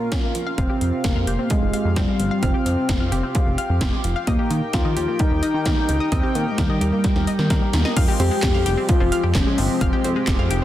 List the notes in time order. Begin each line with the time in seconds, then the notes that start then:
Already playing: C#4 F4 A#4 F5
0.12 C#4, kick, snare, closed hi-hat
0.23 A#3
0.35 F3, closed hi-hat
0.47 F5
0.58 F1 C4 G4 F5, kick, closed hi-hat
0.70 G4
0.81 F2, closed hi-hat
1.04 F1 F3 A#3, kick, snare, closed hi-hat
1.16 F2 F5
1.27 F1 G4, closed hi-hat
1.39 C4
1.50 G#3, kick, closed hi-hat
1.62 F1
1.74 F5, closed hi-hat
1.85 F2
1.96 F1 G3 C4, kick, snare, closed hi-hat
2.08 G#3
2.20 G1 F3, closed hi-hat
2.31 F5
2.43 F1 C4 F5, kick, closed hi-hat
2.54 G4
2.66 F2, closed hi-hat
2.89 F1 F3, kick, snare, closed hi-hat
3.00 F2 F5
3.12 F1 G4, closed hi-hat
3.23 C4
3.35 G#3, kick, closed hi-hat
3.47 F1
3.58 F5, closed hi-hat
3.70 F2
3.81 F1 C4, kick, snare, closed hi-hat
3.93 G#3
4.04 F1 F3, closed hi-hat
4.16 F5
4.27 D#2 A#3 D#4 A#4 D#5 G5, kick, closed hi-hat
4.39 G4
4.50 D#3 A#3, closed hi-hat
4.73 D#2 D#3 F4, kick, snare, closed hi-hat
4.85 D#3 D#5
4.96 D#2 F4 G4, closed hi-hat
5.08 A#3
5.19 G3 D#4, kick, closed hi-hat
5.31 D#2
5.43 D#5, closed hi-hat
5.54 D#3
5.66 D#2 A#3 D#4, kick, snare, closed hi-hat
5.77 G3
5.89 C#2 D#3, closed hi-hat
6.00 D#5
6.12 D#2 C4 D#5, kick, closed hi-hat
6.23 G4
6.35 D#3 A#3, closed hi-hat
6.51 G#3
6.58 D#2 D#3 G3, kick, snare, closed hi-hat
6.70 D#3 D#5
6.81 D#2 G4, closed hi-hat
6.93 A#3
7.04 G3, kick, snare, closed hi-hat
7.16 D#2, snare
7.27 D#5, closed hi-hat
7.39 D#3, snare
7.50 D#2 A#3, kick, snare, closed hi-hat
7.62 G3
7.73 D#2 D#3, snare, closed hi-hat
7.85 D#5, snare
7.97 F1 F3 G#3 C4 G4 F5, kick, closed hi-hat, crash
8.08 G4
8.20 F2 C4 G4, closed hi-hat
8.31 G#3
8.43 F1, kick, snare, clap, closed hi-hat
8.54 F2 F5
8.66 F1 G4, closed hi-hat
8.77 C4
8.89 F4, kick, closed hi-hat
9.00 F1 F3
9.12 F5, closed hi-hat
9.23 F2 G4
9.35 F1 C#4, kick, snare, clap, closed hi-hat
9.47 G#3
9.58 G1 F3 C4, open hi-hat
9.81 F1 F5, kick, closed hi-hat
9.93 G4
10.04 F2 C4, closed hi-hat
10.16 G#3
10.27 F1, kick, snare, clap, closed hi-hat
10.39 F2 F5
10.51 F1 G4, closed hi-hat